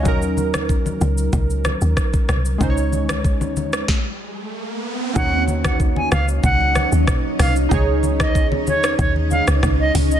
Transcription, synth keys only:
\new Staff \with { instrumentName = "Synth keys" } { \time 4/4 \key ees \dorian \tempo 4 = 94 << { des''16 r2. r8. | r1 | r1 | r1 | } \\ { <ges des' ees' bes'>1 | <aes des' ees' c'' des''>2 r2 | <bes des' ees' ges' des''>1 | <ees' aes' des''>1 | } >> }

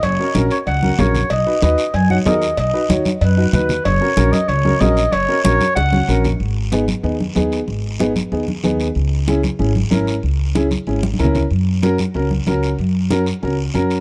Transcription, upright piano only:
\new Staff \with { instrumentName = "Upright piano" } { \time 4/4 \key fis \mixolydian \tempo 4 = 188 r8 <cis' fis' ais'>8 <cis' fis' ais'>8 r4 <cis' fis' ais'>8 <cis' fis' ais'>8 r8 | r8 <dis' fis' b'>8 <dis' fis' b'>8 r4 <dis' fis' cis''>8 <dis' fis' ais'>8 r8 | r8 <dis' fis' b'>8 <dis' fis' cis''>8 r4 <dis' fis' b'>8 <dis' fis' b'>8 r8 | r8 <cis' fis' ais'>8 <cis' fis' ais'>8 r4 <cis' fis' ais'>8 <cis' fis' ais'>8 r8 |
r8 <cis' fis' ais'>8 <cis' fis' ais'>8 r4 <cis' fis' cis''>8 <cis' fis' ais'>8 r8 | r4 <b dis' gis'>8 r8 <b dis' gis'>8 r8 <b dis' gis'>8 r8 | r4 <b dis' gis'>8 r8 <b dis' gis'>8 r8 <b dis' gis'>8 r8 | r4 <cis' e' gis'>8 r8 <cis' e' gis'>8 r8 <cis' e' ais'>8 r8 |
r4 <cis' e' gis'>8 r8 <cis' e' gis'>8 r8 <cis' e' ais'>8 r8 | r4 <cis' fis' ais'>8 r8 <cis' fis' ais'>8 r8 <cis' fis' ais'>8 r8 | r4 <cis' fis' ais'>8 r8 <cis' fis' ais'>8 r8 <cis' fis' ais'>8 r8 | }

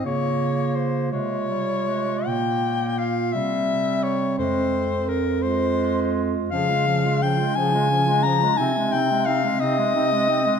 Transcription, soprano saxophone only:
\new Staff \with { instrumentName = "Soprano saxophone" } { \time 6/8 \key f \minor \tempo 4. = 58 des''4 c''8 des''4. | g''4 f''8 e''4 des''8 | c''4 bes'8 c''4 r8 | \key aes \major f''4 g''8 aes''4 bes''8 |
aes''8 g''8 f''8 ees''4. | }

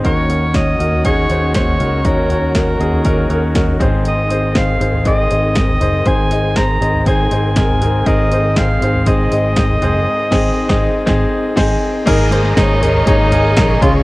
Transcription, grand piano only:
<<
  \new Staff \with { instrumentName = "Grand piano" } { \time 4/4 \key aes \mixolydian \tempo 4 = 120 <des' ees' ges' bes'>16 r16 <des' ees' ges' bes'>16 r16 <des' ees' ges' des''>16 r16 <des' ees' ges' bes'>16 r16 <des' ees' ges' aes'>16 r16 <des' ees' ges' c''>16 r16 <des' ees' ges' c''>16 r16 <des' ees' ges' bes'>16 r16 | <des' ees' ges' des''>16 r16 <des' ees' ges' des''>16 r16 <des' ees' ges' bes'>16 r16 <des' ees' ges' aes'>16 r16 <des' ees' ges' bes'>16 r16 <des' ees' ges' bes'>16 r16 <des' ees' ges' bes'>16 r16 <c' ees' aes' c''>8~ | <c' ees' aes' c''>16 r16 <c' ees' aes' c''>16 r16 <c' ees' aes' c''>16 r16 <c' ees' aes' c''>16 r16 <c' ees' aes' ees''>16 r16 <c' ees' aes' ees''>16 r16 <c' ees' aes' ees''>16 r16 <c' ees' aes' c''>16 r16 | <c' ees' aes' c''>16 r16 <c' ees' aes' ees''>16 r16 <c' ees' aes' c''>16 r16 <c' ees' aes' ees''>16 r16 <c' ees' aes' c''>16 r16 <c' ees' aes' c''>16 r16 <c' ees' aes' bes'>16 r16 <c' ees' aes' bes'>16 r16 |
<c' ees' aes' bes'>16 r16 <c' ees' aes' c''>16 r16 <c' ees' aes' c''>16 r16 <c' ees' aes' c''>16 r16 <c' ees' aes' c''>16 r16 <c' ees' aes' ees''>16 r16 <c' ees' aes' c''>16 r16 <c' ees' aes' c''>16 r16 | r8 <c' ees' aes'>8 r16 <c' ees' aes' ees''>8 r16 <c' ees' aes'>8 r8 <c' ees' aes' c'' aes''>8 r8 | <bes ees' aes' bes'>16 r16 <bes ees' aes' c''>16 r16 <bes ees' aes' c''>16 r16 <bes ees' aes' bes'>16 r16 <bes ees' aes' des''>16 r16 <bes ees' aes' bes'>16 r16 <bes ees' aes' bes'>16 r16 <aes des' f' aes'>8 | }
  \new Staff \with { instrumentName = "Grand piano" } { \clef bass \time 4/4 \key aes \mixolydian ees4. r2 r8 | ees4. r2 aes,8~ | aes,4 r2 r8 aes,8~ | aes,4 r2 r8 aes,8~ |
aes,4 r2 r8 aes,8 | r1 | aes,4. r2 des8 | }
>>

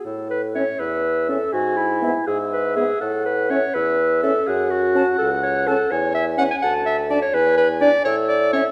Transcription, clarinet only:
\new Staff \with { instrumentName = "Clarinet" } { \time 6/8 \key a \major \tempo 4. = 82 a'8 b'8 cis''8 b'4 a'8 | fis'8 e'4 gis'8 b'8 gis'8 | a'8 b'8 cis''8 b'4 a'8 | gis'8 fis'4 a'8 cis''8 a'8 |
cis''8 e''8 fis''16 gis''16 fis''8 e''8 d''16 cis''16 | b'8 b'8 d''8 cis''8 d''8 cis''8 | }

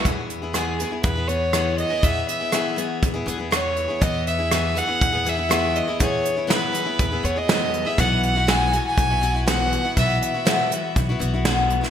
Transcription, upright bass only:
\new Staff \with { instrumentName = "Upright bass" } { \clef bass \time 4/4 \key e \major \tempo 4 = 121 e,2 e,2 | e,8 r4. e,8 e,4. | e,2 e,2 | e,8 r4. e,8 e,4. |
b,,2 b,,2 | b,,8 r4. b,,8 b,,4. | }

